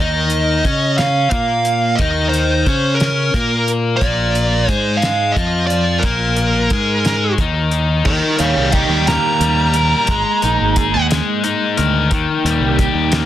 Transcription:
Already playing: D#5
0.00 D#2 D#3 D#4
0.30 closed hi-hat
0.64 C#3 C#4 C#5, kick, closed hi-hat
0.98 F5, snare, closed hi-hat
1.30 A#2 A#3 A#4 F5, kick, closed hi-hat
1.65 closed hi-hat
1.96 D#5, kick, closed hi-hat
2.00 D#2 D#3 D#4
2.29 C5
2.33 closed hi-hat
2.66 C#3 C#4 C#5, kick, closed hi-hat
2.95 A#4
3.00 snare, closed hi-hat
3.34 A#2 A#3 A#4, kick, closed hi-hat
3.68 closed hi-hat
3.97 D5
4.01 A#1 A#2 A#3, kick, closed hi-hat
4.35 closed hi-hat
4.68 G#2 G#3 G#4 C5, kick, closed hi-hat
4.97 F5
5.02 snare, closed hi-hat
5.32 D#5
5.36 F2 F3 F4, kick, closed hi-hat
5.67 D5, closed hi-hat
5.99 A#1 A#4, closed hi-hat
6.03 A#2 A#3, kick
6.37 closed hi-hat
6.70 G#2 G#3 G#4, kick, closed hi-hat
7.05 snare, closed hi-hat
7.38 D#2 D#3 D#4, kick, closed hi-hat
7.71 closed hi-hat
8.05 D#2 D#3 A#4 D#5, kick, crash
8.38 D#2 G3 C#5 F5, closed hi-hat
8.57 C2
8.72 G4 D#5 G5, kick, closed hi-hat
8.89 D#2
9.07 A#3 A#5, snare, closed hi-hat
9.40 D#2 G3, closed hi-hat
9.74 A#4, closed hi-hat
10.07 G#1 G#3 A#3 D#4 G#4, kick, closed hi-hat
10.42 A#1 D#4, closed hi-hat
10.61 G#1
10.76 G#4, kick, closed hi-hat
10.95 D#2
11.11 G#3, snare, closed hi-hat
11.44 D#4, closed hi-hat
11.77 D2 A#4, closed hi-hat
12.10 D#2 D#3 A#3 D#4 G4, kick, closed hi-hat
12.44 D#2 G3, closed hi-hat
12.60 C2
12.79 G4, kick, closed hi-hat
12.94 D#2
13.12 A#3, snare, closed hi-hat

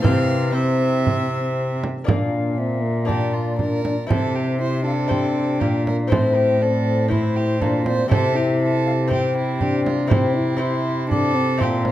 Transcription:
0.02 C3 E3 C4 C5 F5 F6, frame drum
0.52 C4 E4 C5 E5 E6
1.07 frame drum
1.84 frame drum
2.04 A#2 A#3 D4 D5
2.08 F5, frame drum
2.58 C4 E5
2.83 A#3
3.05 A#3 D4 G4 D5
3.09 frame drum
3.33 F4
3.59 D4 A#4, frame drum
3.83 D4 D5, frame drum
4.07 C3 C4 E4 A4 C5 E5, frame drum
4.36 G4
4.60 E4 C5
4.85 D4 A4 F5
5.08 E4 C5 G5, frame drum
5.60 A#2 G4, frame drum
5.87 A#4, frame drum
6.07 A2 C4 E4 C5
6.11 C5 E5, frame drum
6.36 G4
6.61 C4 A4 D5
7.08 C4 E4 C5, frame drum
7.36 G4
7.61 A#2 D4 A4, frame drum
7.85 C4 C5 D5, frame drum
8.08 C3 C4 E4 A4 C5 E5, frame drum
8.36 E4 G4
8.62 A4
8.86 F5
9.08 C4 E4 C5, frame drum
9.12 G4 G5
9.37 E4
9.61 D4 G4, frame drum
9.86 F4, frame drum
10.07 C4 E4 C5 G5, frame drum
10.36 E4
10.57 C4 E4 C5 C6
11.10 D4 A4 D6, frame drum
11.35 C4
11.57 A#2 C4 E4 C5 C6, frame drum
11.62 G4
11.85 F4, frame drum

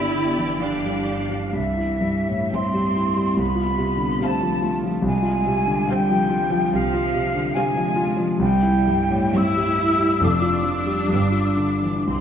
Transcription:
Already playing: G1 D3 E3 G3 B3 D4 E4 G4 D5 B5
0.14 D3
0.38 E3
0.58 D3 F3 D4 G4 D5 F5
0.84 G3
1.06 D4
1.29 G3
1.53 C2 E3 E5
1.77 E4
2.01 G2
2.28 A2
2.52 G2 C4 G4 E5 C6
2.73 G3
2.97 E4
3.16 G3
3.37 C2 B3 B5
3.55 F4
3.78 C3
3.97 D3
4.19 C3 F4 F5
4.24 A3 C4 A5
4.41 F3
4.62 F4
4.84 F3
5.02 C2
5.06 G#3 G#5
5.22 F4
5.46 C3
5.66 D3
5.88 C3 G3 C4 F4 F5 G5
6.09 F3
6.30 F4
6.50 F3
6.73 C2 C3 F3 F5
6.93 F4
7.14 C3
7.35 D3
7.54 C3 G#3 C4 F4 F5 G#5
7.76 F3
7.96 F4
8.17 F3
8.39 C2 G3 G5
8.63 E4
8.87 G2
9.10 A2
9.33 G2 C4 E4 G4 E5 E6
9.56 G3
9.78 E4
9.98 G3
10.20 F1 F2 A3 D4 A4 F5 D6
10.30 E6
10.39 F4 D6
10.46 E6
10.54 D6
10.62 F3 E6
10.71 D6
10.79 E6
10.86 G3 D6
10.93 E6
11.02 D6
11.08 G1 G2 E6
11.12 B3 G4 F5
11.18 D6
11.27 E6
11.31 F4
11.37 D6
11.44 E6
11.52 D6
11.56 D3
11.83 E3
12.05 C2 C4 C6

